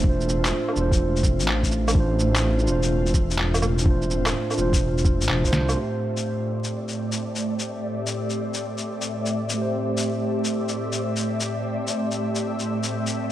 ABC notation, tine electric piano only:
X:1
M:4/4
L:1/16
Q:"Swing 16ths" 1/4=126
K:Am
V:1 name="Tine electric piano"
[DFc]6 [DFc]8- [DFc]2 | [DFc]6 [DFc]8- [DFc]2 | [DFc]6 [DFc]6- [DFc] [DFc] [DFc]2 | [A,G]16- |
[A,G]16 | [A,Gc]16- | [A,Gc]16 |]